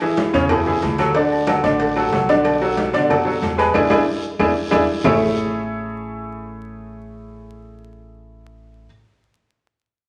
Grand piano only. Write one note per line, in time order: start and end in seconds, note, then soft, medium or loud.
0.01 0.28 E3 medium
0.01 0.28 E4 medium
0.01 0.29 G#4 medium
0.34 0.47 C#3 medium
0.34 0.47 C#4 loud
0.34 0.48 C#5 medium
0.51 0.64 E3 medium
0.51 0.64 E4 medium
0.51 0.64 G#4 medium
0.67 0.93 E3 medium
0.67 0.93 E4 medium
0.67 0.94 G#4 medium
0.99 1.12 F#3 medium
0.99 1.12 F#4 medium
0.99 1.12 A4 medium
1.16 1.42 D3 medium
1.16 1.42 D4 medium
1.16 1.42 D5 medium
1.47 1.61 F#3 medium
1.47 1.61 F#4 medium
1.47 1.61 A4 medium
1.63 1.90 D3 medium
1.63 1.90 D4 medium
1.63 1.91 D5 medium
1.96 2.09 F#3 medium
1.96 2.10 F#4 medium
1.96 2.10 A4 medium
2.12 2.26 F#3 medium
2.12 2.26 F#4 medium
2.12 2.26 A4 medium
2.29 2.56 D3 medium
2.29 2.56 D4 loud
2.29 2.56 D5 loud
2.62 2.88 F#3 medium
2.62 2.88 F#4 medium
2.62 2.88 A4 medium
2.93 3.07 D3 loud
2.93 3.07 D4 medium
2.93 3.07 D5 loud
3.09 3.23 F#3 medium
3.09 3.23 F#4 medium
3.09 3.23 A4 medium
3.25 3.52 F#3 medium
3.25 3.52 F#4 medium
3.25 3.53 A4 medium
3.58 3.72 G#3 medium
3.58 3.72 G#4 medium
3.58 3.72 B4 medium
3.74 3.85 D4 loud
3.74 3.85 E4 medium
3.74 3.85 G#4 medium
3.90 4.01 D4 loud
3.90 4.01 E4 loud
3.90 4.01 G#4 loud
4.40 4.50 D4 medium
4.40 4.50 E4 medium
4.40 4.50 G#4 loud
4.71 4.82 D4 loud
4.71 4.82 E4 loud
4.71 4.82 G#4 loud
5.04 8.84 A3 medium
5.04 8.84 E4 medium
5.04 8.85 G#4 medium
5.04 8.84 A4 medium
5.04 8.85 C#5 medium
5.04 8.85 E5 loud